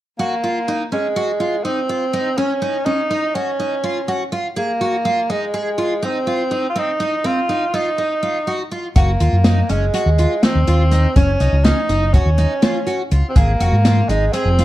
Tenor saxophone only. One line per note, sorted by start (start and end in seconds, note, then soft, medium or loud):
0.19 0.88 A#3 medium
0.93 1.66 G#3 medium
1.65 2.39 C4 medium
2.38 2.87 C#4 medium
2.86 3.37 D#4 medium
3.35 4.32 C#4 medium
4.58 5.32 A#3 medium
5.31 6.07 G#3 medium
6.05 6.69 C4 medium
6.70 6.80 F4 medium
6.78 7.28 D#4 medium
7.26 7.76 F4 medium
7.75 8.72 D#4 medium
8.97 9.72 A#3 medium
9.71 10.45 G#3 medium
10.44 11.16 C4 medium
11.16 11.67 C#4 medium
11.65 12.15 D#4 medium
12.14 13.12 C#4 medium
13.30 13.38 C4 medium
13.37 14.11 A#3 medium
14.09 14.35 G#3 medium
14.33 14.65 C4 medium